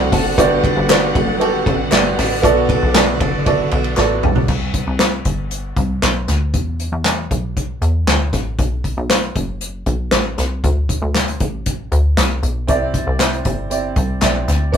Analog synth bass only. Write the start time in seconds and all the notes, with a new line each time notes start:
Already playing: C2
0.12 F#1
0.38 G1
0.76 G1
1.15 F#1
1.66 A1
1.92 G1
2.18 A1
2.44 B1
2.83 B1
3.20 F#1
3.72 B1
3.98 A1
4.23 B1
4.48 C2
4.87 C2
5.25 G1
5.76 C2
6.03 B1
6.28 D2
6.54 E2
6.92 E2
7.31 B1
7.82 E2
8.08 D2
8.33 A1
8.59 B1
8.97 B1
9.36 F#1
9.86 B1
10.12 A1
10.38 C2
10.64 D2
11.02 D2
11.40 A1
11.92 D2
12.17 C2
12.43 B1
12.68 C2
13.07 C2
13.46 G1
13.96 C2
14.22 B1
14.48 D2
14.73 E2